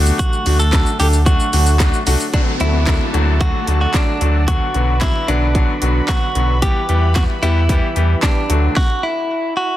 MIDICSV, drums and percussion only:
0, 0, Header, 1, 2, 480
1, 0, Start_track
1, 0, Tempo, 535714
1, 173, Time_signature, 4, 2, 24, 8
1, 8753, End_track
2, 0, Start_track
2, 0, Title_t, "Drums"
2, 54, Note_on_c, 9, 82, 78
2, 144, Note_off_c, 9, 82, 0
2, 173, Note_on_c, 9, 36, 114
2, 173, Note_on_c, 9, 42, 87
2, 173, Note_on_c, 9, 82, 85
2, 263, Note_off_c, 9, 36, 0
2, 263, Note_off_c, 9, 42, 0
2, 263, Note_off_c, 9, 82, 0
2, 295, Note_on_c, 9, 82, 57
2, 384, Note_off_c, 9, 82, 0
2, 411, Note_on_c, 9, 46, 61
2, 411, Note_on_c, 9, 82, 45
2, 501, Note_off_c, 9, 46, 0
2, 501, Note_off_c, 9, 82, 0
2, 533, Note_on_c, 9, 82, 80
2, 623, Note_off_c, 9, 82, 0
2, 651, Note_on_c, 9, 42, 66
2, 651, Note_on_c, 9, 82, 68
2, 653, Note_on_c, 9, 39, 118
2, 654, Note_on_c, 9, 36, 119
2, 657, Note_on_c, 9, 38, 90
2, 740, Note_off_c, 9, 42, 0
2, 740, Note_off_c, 9, 82, 0
2, 743, Note_off_c, 9, 39, 0
2, 744, Note_off_c, 9, 36, 0
2, 747, Note_off_c, 9, 38, 0
2, 772, Note_on_c, 9, 82, 60
2, 861, Note_off_c, 9, 82, 0
2, 893, Note_on_c, 9, 46, 81
2, 893, Note_on_c, 9, 82, 57
2, 983, Note_off_c, 9, 46, 0
2, 983, Note_off_c, 9, 82, 0
2, 1012, Note_on_c, 9, 82, 80
2, 1102, Note_off_c, 9, 82, 0
2, 1132, Note_on_c, 9, 36, 125
2, 1133, Note_on_c, 9, 42, 70
2, 1133, Note_on_c, 9, 82, 71
2, 1221, Note_off_c, 9, 36, 0
2, 1222, Note_off_c, 9, 42, 0
2, 1222, Note_off_c, 9, 82, 0
2, 1253, Note_on_c, 9, 82, 62
2, 1343, Note_off_c, 9, 82, 0
2, 1372, Note_on_c, 9, 46, 73
2, 1372, Note_on_c, 9, 82, 51
2, 1461, Note_off_c, 9, 46, 0
2, 1461, Note_off_c, 9, 82, 0
2, 1492, Note_on_c, 9, 82, 91
2, 1581, Note_off_c, 9, 82, 0
2, 1612, Note_on_c, 9, 36, 113
2, 1612, Note_on_c, 9, 39, 123
2, 1613, Note_on_c, 9, 42, 74
2, 1613, Note_on_c, 9, 82, 76
2, 1617, Note_on_c, 9, 38, 96
2, 1701, Note_off_c, 9, 36, 0
2, 1702, Note_off_c, 9, 39, 0
2, 1703, Note_off_c, 9, 42, 0
2, 1703, Note_off_c, 9, 82, 0
2, 1706, Note_off_c, 9, 38, 0
2, 1733, Note_on_c, 9, 82, 63
2, 1823, Note_off_c, 9, 82, 0
2, 1852, Note_on_c, 9, 46, 100
2, 1852, Note_on_c, 9, 82, 70
2, 1941, Note_off_c, 9, 46, 0
2, 1941, Note_off_c, 9, 82, 0
2, 1974, Note_on_c, 9, 82, 77
2, 2063, Note_off_c, 9, 82, 0
2, 2093, Note_on_c, 9, 36, 111
2, 2093, Note_on_c, 9, 42, 80
2, 2182, Note_off_c, 9, 42, 0
2, 2183, Note_off_c, 9, 36, 0
2, 2331, Note_on_c, 9, 42, 41
2, 2420, Note_off_c, 9, 42, 0
2, 2570, Note_on_c, 9, 42, 61
2, 2573, Note_on_c, 9, 39, 108
2, 2574, Note_on_c, 9, 36, 114
2, 2577, Note_on_c, 9, 38, 87
2, 2660, Note_off_c, 9, 42, 0
2, 2662, Note_off_c, 9, 39, 0
2, 2663, Note_off_c, 9, 36, 0
2, 2667, Note_off_c, 9, 38, 0
2, 2814, Note_on_c, 9, 42, 50
2, 2904, Note_off_c, 9, 42, 0
2, 3052, Note_on_c, 9, 36, 116
2, 3052, Note_on_c, 9, 42, 63
2, 3141, Note_off_c, 9, 36, 0
2, 3142, Note_off_c, 9, 42, 0
2, 3292, Note_on_c, 9, 42, 49
2, 3382, Note_off_c, 9, 42, 0
2, 3532, Note_on_c, 9, 36, 109
2, 3533, Note_on_c, 9, 39, 109
2, 3534, Note_on_c, 9, 42, 69
2, 3537, Note_on_c, 9, 38, 93
2, 3621, Note_off_c, 9, 36, 0
2, 3622, Note_off_c, 9, 39, 0
2, 3623, Note_off_c, 9, 42, 0
2, 3627, Note_off_c, 9, 38, 0
2, 3773, Note_on_c, 9, 42, 62
2, 3862, Note_off_c, 9, 42, 0
2, 4013, Note_on_c, 9, 36, 110
2, 4013, Note_on_c, 9, 42, 80
2, 4102, Note_off_c, 9, 42, 0
2, 4103, Note_off_c, 9, 36, 0
2, 4251, Note_on_c, 9, 42, 42
2, 4340, Note_off_c, 9, 42, 0
2, 4491, Note_on_c, 9, 42, 63
2, 4493, Note_on_c, 9, 39, 108
2, 4494, Note_on_c, 9, 36, 114
2, 4498, Note_on_c, 9, 38, 85
2, 4581, Note_off_c, 9, 42, 0
2, 4583, Note_off_c, 9, 39, 0
2, 4584, Note_off_c, 9, 36, 0
2, 4587, Note_off_c, 9, 38, 0
2, 4734, Note_on_c, 9, 42, 53
2, 4824, Note_off_c, 9, 42, 0
2, 4972, Note_on_c, 9, 36, 115
2, 4973, Note_on_c, 9, 42, 65
2, 5062, Note_off_c, 9, 36, 0
2, 5062, Note_off_c, 9, 42, 0
2, 5212, Note_on_c, 9, 42, 49
2, 5301, Note_off_c, 9, 42, 0
2, 5452, Note_on_c, 9, 36, 110
2, 5453, Note_on_c, 9, 39, 109
2, 5454, Note_on_c, 9, 42, 70
2, 5457, Note_on_c, 9, 38, 89
2, 5542, Note_off_c, 9, 36, 0
2, 5543, Note_off_c, 9, 39, 0
2, 5544, Note_off_c, 9, 42, 0
2, 5547, Note_off_c, 9, 38, 0
2, 5693, Note_on_c, 9, 42, 62
2, 5782, Note_off_c, 9, 42, 0
2, 5933, Note_on_c, 9, 42, 78
2, 5934, Note_on_c, 9, 36, 109
2, 6023, Note_off_c, 9, 36, 0
2, 6023, Note_off_c, 9, 42, 0
2, 6171, Note_on_c, 9, 42, 43
2, 6261, Note_off_c, 9, 42, 0
2, 6411, Note_on_c, 9, 42, 65
2, 6413, Note_on_c, 9, 39, 103
2, 6414, Note_on_c, 9, 36, 117
2, 6418, Note_on_c, 9, 38, 85
2, 6501, Note_off_c, 9, 42, 0
2, 6503, Note_off_c, 9, 39, 0
2, 6504, Note_off_c, 9, 36, 0
2, 6508, Note_off_c, 9, 38, 0
2, 6655, Note_on_c, 9, 42, 51
2, 6744, Note_off_c, 9, 42, 0
2, 6892, Note_on_c, 9, 36, 114
2, 6893, Note_on_c, 9, 42, 68
2, 6982, Note_off_c, 9, 36, 0
2, 6982, Note_off_c, 9, 42, 0
2, 7132, Note_on_c, 9, 42, 48
2, 7222, Note_off_c, 9, 42, 0
2, 7372, Note_on_c, 9, 36, 107
2, 7373, Note_on_c, 9, 39, 111
2, 7374, Note_on_c, 9, 42, 73
2, 7378, Note_on_c, 9, 38, 94
2, 7462, Note_off_c, 9, 36, 0
2, 7463, Note_off_c, 9, 39, 0
2, 7464, Note_off_c, 9, 42, 0
2, 7467, Note_off_c, 9, 38, 0
2, 7613, Note_on_c, 9, 42, 65
2, 7703, Note_off_c, 9, 42, 0
2, 7852, Note_on_c, 9, 38, 86
2, 7853, Note_on_c, 9, 36, 106
2, 7942, Note_off_c, 9, 38, 0
2, 7943, Note_off_c, 9, 36, 0
2, 8753, End_track
0, 0, End_of_file